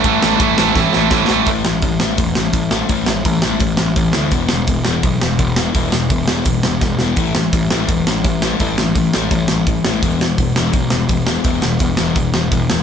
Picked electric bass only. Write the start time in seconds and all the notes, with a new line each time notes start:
0.04 A1
0.24 A1
0.40 A1
0.59 A1
0.75 A1
0.96 A1
1.11 A1
1.29 A1
1.47 A1
1.66 A1
1.82 A1
2.02 A1
2.18 E1
2.37 A1
2.53 A1
2.89 A1
3.07 A1
3.25 A1
3.45 A1
3.61 A1
3.80 A1
3.97 A1
4.16 D2
4.32 E1
4.51 E1
4.68 E1
4.87 E1
5.03 B1
5.22 E1
5.39 E1
5.75 E1
5.93 E1
6.10 E1
6.28 E1
6.46 E1
6.64 E1
6.81 E1
6.99 E1
7.17 A1
7.36 A1
7.53 A1
7.72 A1
7.88 E1
8.08 A1
8.24 A1
8.60 A1
8.78 A1
8.95 A1
9.15 A1
9.31 A1
9.51 A1
9.66 A1
9.86 A1
10.02 E1
10.20 E1
10.38 E1
10.56 E1
10.73 B1
10.92 E1
11.09 E1
11.45 E1
11.64 E1
11.80 E1
12.00 E1
12.15 E1
12.35 E1
12.51 E1
12.70 E1